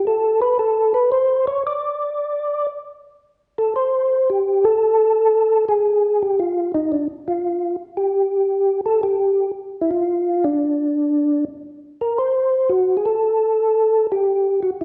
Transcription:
0.07 0.40 A4 loud
0.42 0.58 B4 loud
0.59 0.93 A4 medium
0.94 1.10 B4 loud
1.12 1.45 C5 loud
1.47 1.63 C#5 loud
1.67 2.67 D5 medium
3.58 3.74 A4 loud
3.76 4.29 C5 medium
4.30 4.65 G4 medium
4.64 5.65 A4 loud
5.69 6.23 G#4 medium
6.22 6.39 G4 medium
6.39 6.72 F4 medium
6.74 6.92 D#4 medium
6.92 7.08 D4 medium
7.28 7.76 F4 medium
7.97 8.81 G4 medium
8.86 9.01 A4 loud
9.03 9.51 G4 medium
9.81 9.90 E4 medium
9.91 10.44 F4 loud
10.44 11.45 D4 medium
12.01 12.18 A#4 medium
12.18 12.72 C5 medium
12.69 12.97 F#4 medium
12.97 13.06 G#4 medium
13.05 14.07 A4 loud
14.12 14.60 G4 medium
14.63 14.70 F#4 medium
14.81 14.84 E4 medium

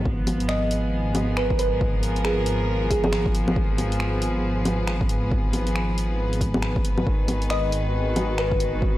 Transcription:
0.00 8.98 B3 medium
0.05 7.05 G#1 medium
0.05 7.06 F3 medium
0.05 kick loud
0.27 closed hi-hat medium
0.27 low bongo soft
0.40 closed hi-hat soft
0.44 8.77 G#4 medium
0.48 0.84 D#5 medium
0.48 finger snap loud
0.71 closed hi-hat medium
1.15 closed hi-hat medium
1.15 low bongo medium
1.26 4.20 A#4 medium
1.37 1.57 B4 medium
1.37 finger snap loud
1.50 kick loud
1.59 1.83 B4 medium
1.59 closed hi-hat medium
1.81 kick loud
2.03 closed hi-hat medium
2.16 closed hi-hat soft
2.25 2.48 G#4 medium
2.25 finger snap loud
2.46 closed hi-hat medium
2.91 2.99 G#4 medium
2.91 kick loud
2.91 closed hi-hat medium
3.04 3.10 G#4 medium
3.04 low bongo medium
3.13 finger snap loud
3.26 kick loud
3.35 closed hi-hat medium
3.48 low bongo medium
3.56 kick loud
3.78 closed hi-hat medium
3.78 low bongo soft
3.92 closed hi-hat soft
4.00 finger snap loud
4.06 8.98 B4 medium
4.22 closed hi-hat medium
4.65 closed hi-hat medium
4.65 low bongo medium
4.87 finger snap loud
5.01 kick loud
5.09 closed hi-hat medium
5.32 kick loud
5.53 closed hi-hat medium
5.53 low bongo soft
5.67 closed hi-hat soft
5.76 finger snap loud
5.98 closed hi-hat medium
6.33 closed hi-hat soft
6.41 kick loud
6.41 closed hi-hat medium
6.54 low bongo medium
6.62 finger snap loud
6.76 kick loud
6.85 closed hi-hat medium
6.98 low bongo medium
7.06 8.98 G#1 medium
7.06 8.98 D#3 medium
7.06 kick loud
7.28 closed hi-hat medium
7.28 low bongo soft
7.42 closed hi-hat soft
7.50 7.86 D#5 medium
7.50 finger snap loud
7.72 closed hi-hat medium
7.85 8.98 F#4 medium
8.16 closed hi-hat medium
8.16 low bongo medium
8.38 8.59 B4 loud
8.38 finger snap loud
8.52 kick loud
8.60 closed hi-hat medium
8.82 kick loud

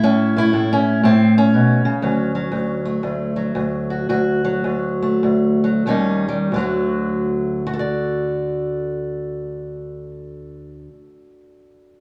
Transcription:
0.00 0.52 A2 medium
0.00 0.70 C#4 loud
0.00 0.36 E4 medium
0.37 2.02 A3 soft
0.37 1.20 E4 loud
0.53 1.02 A2 medium
0.73 1.04 C#4 medium
1.03 1.53 A2 medium
1.03 1.36 C4 medium
1.38 2.85 C#4 medium
1.54 1.85 B2 medium
1.85 2.03 C#3 medium
2.02 2.51 D2 medium
2.02 2.35 F#3 medium
2.35 3.35 F#3 soft
2.52 3.02 D2 medium
2.85 5.01 A3 medium
3.03 3.54 D2 medium
3.36 4.43 F#3 soft
3.55 4.08 D2 medium
3.90 4.07 F#4 medium
4.09 4.63 D2 medium
4.09 5.84 F#4 medium
4.45 5.63 F#3 medium
4.64 5.22 D2 medium
5.02 5.86 A3 medium
5.23 5.85 D2 medium
5.64 5.86 F#3 medium
5.86 6.50 D#2 medium
5.86 6.50 D#3 medium
5.86 6.27 G3 medium
5.86 6.51 C#4 medium
5.86 6.51 D#4 medium
6.29 6.50 G3 medium
6.52 10.88 D2 medium
6.52 10.90 D3 medium
6.56 7.66 F#3 medium
6.56 7.73 A3 medium
6.60 7.67 F#4 medium
7.67 12.00 F#4 medium
7.74 12.00 A4 medium
7.79 12.00 D5 medium

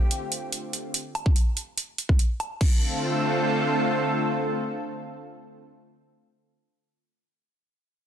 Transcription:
0.00 0.90 D3 medium
0.00 0.90 A3 medium
0.00 0.90 C4 medium
0.00 0.90 F4 medium
0.00 0.92 G4 medium
0.11 closed hi-hat medium
0.32 closed hi-hat soft
0.52 closed hi-hat medium
0.73 closed hi-hat soft
0.94 closed hi-hat medium
1.15 closed hi-hat soft
1.15 low woodblock medium
1.26 kick loud
1.36 closed hi-hat medium
1.57 closed hi-hat soft
1.78 closed hi-hat medium
1.98 closed hi-hat soft
2.09 kick medium
2.19 closed hi-hat medium
2.40 closed hi-hat soft
2.40 low woodblock soft
2.61 5.64 D3 medium
2.61 5.64 A3 medium
2.61 5.64 C4 medium
2.61 5.64 F4 medium
2.61 5.64 A4 medium
2.61 kick loud
2.61 crash medium

